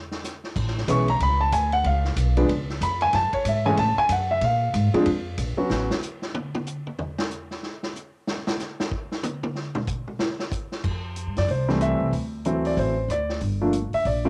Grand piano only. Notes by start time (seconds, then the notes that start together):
0.88 E3 G#3 B3 C#4 C#6
1.10 A#5
1.23 B5
1.41 A5
1.53 G#5
1.73 F#5
1.86 F5
2.37 F3 G#3 B3 D4
2.83 B5
3.02 G#5
3.15 A5
3.34 C#5
3.48 E5
3.65 E3 G#3 A3 C#4 G#5
3.79 A5
3.98 G#5
4.12 F#5
4.31 E5
4.44 F5
4.94 F3 G#3 C4 D4
5.57 F#3 B3 C#4 F#4
11.38 D5
11.51 C5
11.68 E3 G3 A3 C4
11.82 E5
12.46 E3 F#3 A3 C4
12.66 D5
12.79 C5
13.11 D5
13.61 F3 A3 A#3 D4
13.94 E5
14.07 D5
14.25 F3 A3 A#3 C4